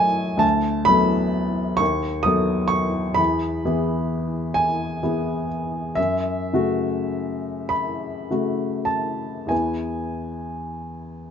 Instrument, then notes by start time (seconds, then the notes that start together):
upright piano
Already playing: F#3 A3 E4 C#5 D#5 G#5
0.37 D2 A5
0.85 F#3 B3 A4 B5
1.77 D#2 C#6
2.23 F#3 B3 D#6
2.27 A4
2.68 C#6
3.15 E2 B5
3.65 E3 B3 G#4
4.54 G#5
5.03 E3 B3 G#4
5.95 F#2 E5
6.53 C#3 A3 F#4
7.69 B5
8.31 C#3 A3 F#4
8.85 A5
9.46 E2 E3 B3 G#5
9.51 B4